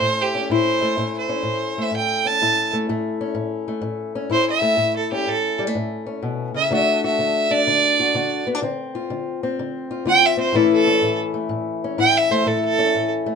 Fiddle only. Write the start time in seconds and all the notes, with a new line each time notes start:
Already playing: C5
0.22 G4
0.53 C5
1.18 C5
1.82 E5
1.96 G5
2.27 A5
4.32 C5
4.50 E5
4.97 A4
5.12 G4
5.29 A4
6.56 E5
6.74 E5
7.05 E5
7.51 D5
10.09 G5
10.26 E5
10.40 C5
10.56 A4
10.73 A4
12.00 G5
12.17 E5
12.32 C5
12.47 A4
12.65 A4